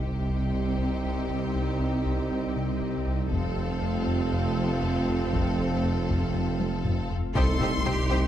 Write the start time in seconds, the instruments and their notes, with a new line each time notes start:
Already playing: double bass section C2, sub bass C2, tuba C2, cello section C3, ambient pad G3 C4 G4 D#5, trombone section G3 D#4, viola section C4, violin section G4 D#5, sub drop
0.04 analog synth bass C2, taiko
0.29 analog synth bass C2
0.54 analog synth bass C3
0.79 analog synth bass C2
1.04 analog synth bass C2
1.30 analog synth bass C2
1.55 analog synth bass C2
1.80 analog synth bass C2
2.06 analog synth bass C2
2.31 analog synth bass C2
2.56 analog synth bass C3
2.81 analog synth bass C2
3.07 analog synth bass C2
3.31 sub bass F1, double bass section F1, tuba F1, analog synth bass F2, cello section F2, trombone section F3 C4, ambient pad A3 C4 F4 F5, viola section C4, violin section A4 F5, taiko
3.57 analog synth bass F2
3.82 analog synth bass F2
4.07 analog synth bass F2
4.33 analog synth bass F2
4.58 analog synth bass F3
4.83 analog synth bass F2
5.09 analog synth bass F2
5.33 analog synth bass F2, taiko
5.59 analog synth bass F2
5.84 analog synth bass F2
6.09 analog synth bass F2, taiko
6.34 analog synth bass F2
6.60 analog synth bass F3, taiko high
6.85 analog synth bass F2, taiko low-mid
7.10 analog synth bass F2, taiko low
7.35 double bass section C2, sub bass C2, tuba C2, analog synth bass C2, trombone section C3 G3, ambient pad G3 C4 G4 D#5, viola section C4 D#4, french horn section C4 D#4, violin section G4 C5 C6, cello section A4, taiko, impact
7.60 analog synth bass C2, viola section C4 D#4, violin section G4 C5, taiko mid
7.85 double bass section C2, tuba C2, analog synth bass C3, viola section C4 D#4, violin section G4 C5, cello section G4, taiko mid
8.10 analog synth bass C2, viola section C4 D#4, violin section G4 C5